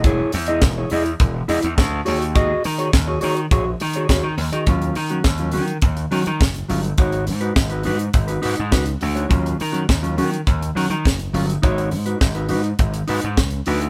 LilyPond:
<<
  \new Staff \with { instrumentName = "Clean electric guitar" } { \time 4/4 \key ees \minor \tempo 4 = 103 <e' gis' cis''>8 r16 <e' gis' ees''>16 r16 <e' gis' cis''>16 <e' gis' ees''>16 r8. <e' gis' ees''>16 r8. <ges' aes' des''>16 r16 | <ges' aes' ees''>8 r16 <ges' aes' des''>16 r16 <ges' aes' des''>16 <ges' aes' des''>16 r16 <ges' aes' des''>16 r8 <ges' aes' des''>16 <ges' aes' des''>16 r8 <ges' aes' ees''>16 | <ges des' f'>8 r16 <ges des' ges'>16 r16 <ges des' f'>16 <ges des' ges'>16 r8. <ges des' ges'>16 r8. <ges des' f'>16 r16 | <ees' ges' des''>8 r16 <ees' ges' ces''>16 r16 <ees' ges' ces''>16 <ees' ges' ces''>16 r8 <ees' ges' ces''>16 <ees' ges' ces''>16 r16 <ees' ges' ces''>16 r8 <ees' ges' des''>16 |
<ges des' f'>8 r16 <ges des' ges'>16 r16 <ges des' f'>16 <ges des' ges'>16 r8. <ges des' ges'>16 r8. <ges des' f'>16 r16 | <ees' ges' des''>8 r16 <ees' ges' ces''>16 r16 <ees' ges' ces''>16 <ees' ges' ces''>16 r8. <ees' ges' ces''>16 r8. <ees' ges' ces''>16 r16 | }
  \new Staff \with { instrumentName = "Slap bass" } { \clef bass \time 4/4 \key ees \minor e,,8 e,8 e,,8 e,8 e,,8 e,16 e,16 d,8 ees,8~ | ees,8 ees8 ees,8 ees8 bes,,8 ees8 ees,16 ees16 ees,16 ees16 | ees,8 ees8 ees,8 ees8 ees,8 ees16 ees16 ges,,8 g,,8 | aes,,8 aes,8 aes,,8 aes,8 aes,,8 aes,16 aes,16 des,8 d,8 |
ees,8 ees8 ees,8 ees8 ees,8 ees16 ees16 ges,,8 g,,8 | aes,,8 aes,8 aes,,8 aes,8 aes,,8 aes,16 aes,16 des,8 d,8 | }
  \new DrumStaff \with { instrumentName = "Drums" } \drummode { \time 4/4 <hh bd>8 hho16 hh16 <hh bd sn>8 hho16 hh16 <hh bd>8 hho16 hh16 <hh bd sn>8 hho16 hh16 | <hh bd>8 hho16 hh16 <hh bd sn>8 hho16 hh16 <hh bd>8 hho16 hh16 <hh bd sn>8 hho16 hh16 | <hh bd>16 hh16 hho16 hh16 <hh bd sn>16 hh16 hho16 hh16 <hh bd>16 hh16 hho16 hh16 <hh bd sn>16 hh16 hho16 hh16 | <hh bd>16 hh16 hho16 hh16 <hh bd sn>16 hh16 hho16 hh16 <hh bd>16 hh16 hho16 hh16 <hh bd sn>16 hh16 hho16 hh16 |
<hh bd>16 hh16 hho16 hh16 <hh bd sn>16 hh16 hho16 hh16 <hh bd>16 hh16 hho16 hh16 <hh bd sn>16 hh16 hho16 hh16 | <hh bd>16 hh16 hho16 hh16 <hh bd sn>16 hh16 hho16 hh16 <hh bd>16 hh16 hho16 hh16 <hh bd sn>16 hh16 hho16 hh16 | }
>>